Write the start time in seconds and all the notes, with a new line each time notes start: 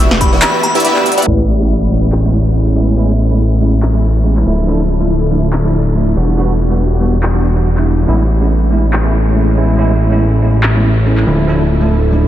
Already playing: E1 E3 B3 D4 F#4 G4
0.11 B4, snare
0.21 G4 B5, kick, closed hi-hat
0.32 B3 E4 G4 B4 D5 E5 E6
0.42 G4 B5, clap, closed hi-hat
0.54 B4
0.63 G4 B5, closed hi-hat
0.75 B3 E4 G4 D5 E5 E6, closed hi-hat
0.80 closed hi-hat
0.84 B3 E4 G4 D5 E5 B5 E6, closed hi-hat
0.96 G4, clap
1.06 G5, closed hi-hat
1.12 closed hi-hat
1.18 B3 E4 G4 D5 F#5 F#6, closed hi-hat
1.22 G#3, closed hi-hat
1.27 A1 G#3 A3 B3 C#4 E4, sub drop
1.59 G#3 B3 C#4 E4
1.90 G#3 B3 C#4 E4
2.12 clap
2.23 G#3 B3 C#4 E4
2.54 G#3 B3 C#4 E4
2.75 G#3 B3 C#4 E4
2.97 G#3 B3 C#4 E4
3.29 G#3 B3 C#4 E4
3.60 G#3 B3 C#4 E4
3.82 clap
3.93 G#3 B3 C#4 E4
4.24 G#3 B3 C#4 E4
4.37 clap
4.45 D1 D3 F3 A3 D4 E4 F4 A4
4.67 F3 A3 D4 E4
5.00 F3 A3 D4 E4
5.30 F3 A3 D4 E4
5.53 clap
5.63 F3 A3 D4 E4
5.94 F3 A3 D4 E4
6.15 E1 E3 G3 B3 D4 F#4 G4
6.37 G3 B3 D4 F#4
6.70 G3 B3 D4 F#4
7.00 G3 B3 D4 F#4
7.23 clap
7.34 G3 B3 D4 F#4
7.55 G3 B3 D4 F#4
7.76 G3 B3 D4 E4, clap
8.07 A1 G#3 A3 B3 C#4 E4
8.40 G#3 B3 C#4 E4
8.71 G#3 B3 C#4 E4
8.93 clap
9.04 G#3 B3 C#4 E4
9.35 G#3 B3 C#4 E4
9.56 G#3 B3 C#4 E4
9.77 G#3 B3 C#4 E4
10.10 G#3 B3 C#4 E4
10.41 G#3 B3 C#4 E4
10.63 clap
10.74 G#3 B3 C#4 E4
11.05 G#3 B3 C#4 E4
11.17 clap
11.26 D1 D3 F3 A3 D4 E4 F4 A4
11.47 F3 A3 D4 E4
11.80 F3 A3 D4 E4
12.11 F3 A3 D4 E4